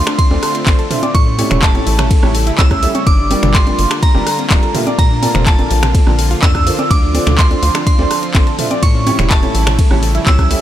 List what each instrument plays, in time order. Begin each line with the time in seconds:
Already playing: supersaw synth D3 A3 C4 F4, synth bell C6
0.07 synth pluck D4 D5, finger snap, cross-stick, closed hi-hat
0.18 synth pluck D4 D5, synth bell C6, kick, closed hi-hat, ride
0.31 analog synth bass D2, grand piano D3 D4 F4 A4 C5 D5, synth pluck D4 D5, snare, high conga
0.43 synth pluck A4 A5, cross-stick, closed hi-hat, open hi-hat
0.55 synth pluck C4 C5, closed hi-hat
0.66 analog synth bass A1, grand piano D3 D4 F4 A4 C5 D5, synth pluck A3 A4, kick, snare, clap, closed hi-hat, ride, high conga
0.79 synth pluck A4 A5, closed hi-hat
0.91 grand piano D4 F4 A4 C5 E5, synth pluck F4 F5, closed hi-hat, mid tom, open hi-hat
1.03 synth pluck D5 D6, closed hi-hat, high conga
1.14 analog synth bass A2, supersaw synth C#3 G3 A3 E4, synth pluck A3 A4, synth bell C#6, kick, closed hi-hat, ride
1.27 synth pluck C#4 C#5
1.39 grand piano A2 C#4 E4 G4 A4 C#5, synth pluck A4 A5, closed hi-hat, open hi-hat, high conga
1.51 analog synth bass E1, synth pluck C#4 C#5, finger snap, closed hi-hat, mid tom
1.62 synth pluck A3, synth bell A5, kick, snare, clap, closed hi-hat, ride
1.75 grand piano A2 C#4 E4 G4 A4 C#5, synth pluck A4 A5, closed hi-hat, high conga
1.87 analog synth bass A1, synth pluck E4 E5, closed hi-hat, open hi-hat
1.99 synth pluck C#4 C#5, finger snap, cross-stick, snare, closed hi-hat, mid tom
2.11 synth pluck A3 A4, kick, closed hi-hat, open hi-hat, ride
2.23 analog synth bass A1, grand piano A2 C#4 E4 G4 A4 C#5, synth pluck C#3 C#4, cross-stick, snare, high conga
2.35 synth pluck A4 A5, closed hi-hat, open hi-hat
2.47 synth pluck E4 E5, snare, closed hi-hat
2.58 analog synth bass C#2, grand piano A2 C#4 E4 G4 A4 C#5, synth pluck C#4 C#5, synth bell E6, kick, snare, clap, closed hi-hat, ride, high conga
2.71 synth pluck C#4 C#5, kick, cross-stick, closed hi-hat
2.83 grand piano C#4 E4 G4 A4 E5, synth pluck C#4 C#5, closed hi-hat, open hi-hat
2.95 synth pluck C#5 C#6, closed hi-hat, high conga
3.07 analog synth bass G1, supersaw synth D3 A#3 F4, synth pluck D4, synth bell D6, kick, closed hi-hat, ride
3.19 synth pluck D4 D5
3.31 grand piano G3 D4 F4 G4 A#4 D5, synth pluck D4 D5, closed hi-hat, open hi-hat, high conga
3.43 analog synth bass G1, synth pluck D3 D4, finger snap, closed hi-hat, mid tom
3.54 synth pluck A3 A4, synth bell C6, kick, snare, clap, closed hi-hat, ride
3.67 grand piano G3 D4 F4 G4 A#4 D5, synth pluck D4 D5, closed hi-hat, high conga
3.79 analog synth bass G1, synth pluck F4 F5, closed hi-hat, open hi-hat
3.91 synth pluck D4 D5, finger snap, cross-stick, closed hi-hat
4.03 synth pluck D4 D5, synth bell A#5, kick, closed hi-hat, ride
4.15 analog synth bass G1, grand piano G3 D4 F4 G4 A#4 D5, synth pluck D4 D5, snare, high conga
4.27 synth pluck A4 A5, cross-stick, closed hi-hat, open hi-hat
4.39 synth pluck C4 C5, closed hi-hat
4.50 analog synth bass D1, grand piano G3 D4 F4 G4 A#4 D5, synth pluck A3 A4, kick, snare, clap, closed hi-hat, ride, high conga
4.63 synth pluck A4 A5, closed hi-hat
4.75 grand piano A#2 D4 F4 G4 A#4 E5, synth pluck F4 F5, closed hi-hat, mid tom, open hi-hat
4.87 synth pluck D5 D6, closed hi-hat, high conga
4.99 analog synth bass A#2, supersaw synth D3 F3 F4, synth pluck A3 A4, synth bell A#5, kick, closed hi-hat, ride
5.11 synth pluck D4 D5
5.23 grand piano A#2 D4 F4 A4 A#4 D5, synth pluck A4 A5, closed hi-hat, open hi-hat, high conga
5.35 analog synth bass F1, synth pluck C4 C5, finger snap, closed hi-hat, mid tom
5.46 synth pluck A3 A4, synth bell A5, kick, snare, clap, closed hi-hat, ride
5.59 grand piano A#2 D4 F4 A4 A#4 D5, synth pluck A4 A5, closed hi-hat, high conga
5.71 analog synth bass A#1, synth pluck F4 F5, closed hi-hat, open hi-hat
5.83 synth pluck C4 C5, finger snap, cross-stick, snare, closed hi-hat, mid tom
5.95 synth pluck A3 A4, kick, closed hi-hat, open hi-hat, ride
6.07 analog synth bass A#1, grand piano A#2 D4 F4 A4 A#4 D5, synth pluck D3 D4, cross-stick, snare, high conga
6.18 synth pluck A4 A5, closed hi-hat, open hi-hat
6.31 synth pluck F4 F5, snare, open hi-hat
6.42 analog synth bass F2, grand piano A#2 D4 F4 A4 A#4 D5, synth pluck D4 D5, synth bell E6, kick, snare, clap, closed hi-hat, ride, high conga
6.55 synth pluck D4 D5, kick, cross-stick, closed hi-hat
6.67 grand piano D3 D4 F4 A4 A#4 C5, synth pluck D4 D5, closed hi-hat, open hi-hat
6.79 synth pluck D5 D6, closed hi-hat, high conga
6.91 analog synth bass D2, supersaw synth C4, synth pluck D4 D5, synth bell D6, kick, closed hi-hat, ride
7.03 synth pluck D4 D5
7.15 grand piano D3 D4 F4 A4 C5 D5, synth pluck D4 D5, closed hi-hat, open hi-hat, high conga
7.27 analog synth bass D2, synth pluck D3 D4, finger snap, closed hi-hat, mid tom
7.38 synth pluck A3 A4, synth bell C6, kick, snare, clap, closed hi-hat, ride
7.51 grand piano D3 D4 F4 A4 C5 D5, synth pluck D4 D5, closed hi-hat, high conga
7.63 analog synth bass D2, synth pluck F4 F5, closed hi-hat, open hi-hat
7.75 synth pluck D4 D5, finger snap, cross-stick, closed hi-hat
7.87 synth pluck D4 D5, synth bell C6, kick, closed hi-hat, ride
7.99 analog synth bass D2, grand piano D3 D4 F4 A4 C5 D5, synth pluck D4 D5, snare, high conga
8.11 synth pluck A4 A5, cross-stick, closed hi-hat, open hi-hat
8.23 synth pluck C4 C5, closed hi-hat
8.34 analog synth bass A1, grand piano D3 D4 F4 A4 C5 D5, synth pluck A3 A4, kick, snare, clap, closed hi-hat, ride, high conga
8.47 synth pluck A4 A5, closed hi-hat
8.59 grand piano D4 F4 A4 C5 E5, synth pluck F4 F5, closed hi-hat, mid tom, open hi-hat
8.71 synth pluck D5 D6, closed hi-hat, high conga
8.83 analog synth bass A2, supersaw synth C#3 G3 E4, synth pluck A3 A4, synth bell C#6, kick, closed hi-hat, ride
8.95 synth pluck C#4 C#5
9.07 grand piano A2 C#4 E4 G4 A4 C#5, synth pluck C#4 C#5, closed hi-hat, open hi-hat, high conga
9.19 analog synth bass E1, synth pluck C#4 C#5, finger snap, closed hi-hat, mid tom
9.30 synth pluck A3 A4, synth bell A5, kick, snare, clap, closed hi-hat, ride
9.43 grand piano A2 C#4 E4 G4 A4 C#5, synth pluck A4 A5, closed hi-hat, high conga
9.55 analog synth bass A1, synth pluck E4 E5, closed hi-hat, open hi-hat
9.67 synth pluck C#4 C#5, finger snap, cross-stick, snare, closed hi-hat, mid tom
9.79 synth pluck A3 A4, kick, closed hi-hat, open hi-hat, ride
9.91 analog synth bass A1, grand piano A2 C#4 E4 G4 A4 C#5, synth pluck C#3 C#4, cross-stick, snare, high conga
10.03 synth pluck A4 A5, closed hi-hat, open hi-hat
10.15 synth pluck E4 E5, snare, closed hi-hat
10.26 analog synth bass C#2, grand piano A2 C#4 E4 G4 A4 C#5, synth pluck C#4 C#5, synth bell E6, kick, snare, clap, closed hi-hat, ride, high conga
10.39 synth pluck C#4 C#5, kick, cross-stick, closed hi-hat
10.51 grand piano C#4 E4 G4 A4 E5, synth pluck C#4 C#5, closed hi-hat, open hi-hat